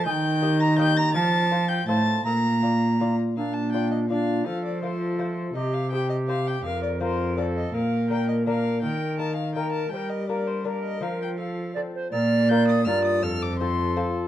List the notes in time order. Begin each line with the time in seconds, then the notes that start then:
0.05 D#3 G#5 G6
0.10 G5
0.42 A#3 G4 D#5
0.61 A#5 A#6
0.78 A#3 G4 D#5 G5 G6
0.97 A#5 A#6
1.14 F3 A5 A6
1.52 F4 C5
1.69 G5 G6
1.87 A2 F4 C5 A5 A6
2.25 A#2 A#5 A#6
2.63 F4 D5
3.00 F4 D5
3.36 A#2 D4 F5
3.53 A5
3.72 F4 D5 G5
3.92 D#5
4.09 D4 F4 D5 F5
4.45 F3 A4 F5
4.65 D5
4.82 A3 F4 A#4 C5
4.88 A4
5.19 A3 F4 C5
5.55 C3 G4 D#5
5.74 F5
5.91 C4 G4 G#4 C5 G5
5.96 G4
6.10 D#5
6.28 C4 G4 C5 F5
6.47 G5
6.63 F2 A#4 F5
6.83 D5
7.00 C4 F4 A#4 C5
7.37 C4 F4 A4 A#4 D5
7.42 A4
7.57 D#5
7.74 A#2 A#4 F5
8.10 A#3 D4 A#4 G5
8.28 D#5
8.46 A#3 D4 A#4 F5
8.81 D#3 A#4 G5
9.19 A#3 D#4 A#4 A5
9.36 F5
9.55 A#3 D#4 A#4 G5
9.72 A5
9.91 G3 C5 G5
9.97 A#4
10.10 D#5
10.27 A#3 D4 A#4 D5
10.47 C5
10.64 A#3 D4 A#4 D5
10.84 D#5
11.00 F3 C4 F4 A#4 F5
11.22 G5
11.38 A4 F5
11.74 C4 F4 A4 D5
11.95 C5
12.11 A#2 D5 F6
12.49 D4 F4 A#4 G6
12.68 D#6
12.85 G2 D4 F4 A#4 D5 F6
13.05 D#6
13.22 F2 A4 F6
13.42 D6
13.59 C4 F4 A4 C6
13.96 C4 F4 A4